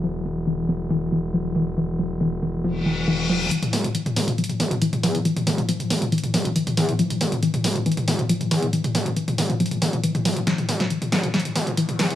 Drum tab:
HH |--------------------------------|--------------------------------|x-x-o-x-x-x-o-x-xxx-o-x-x-x-o-x-|x-x-o-x-x-x-o-x-xxx-o-x-x-x-o-x-|
SD |--------------------------------|--------------------------------|--------------------------------|--------------------------------|
T2 |--------------------------------|--------------------------------|--o---o---o---o---o---o---o---o-|--o---o---o---o---o---o---o---o-|

HH |x-x-o-x-x-x-o-x-xxx-o-x-x-x-o-x-|x-x-o-x-x-x-o-x-xxx-o-x-x-x-o-x-|x-x-o-x-x-x-o-x-xxx-o-x-x-x-o-x-|
SD |--------------------------------|--------------------------------|o-----o-----o---o-----------o---|
T2 |--o---o---o---o---o---o---o---o-|--o---o---o---o---o---o---o---o-|--o---o---o---o---o---o---o---o-|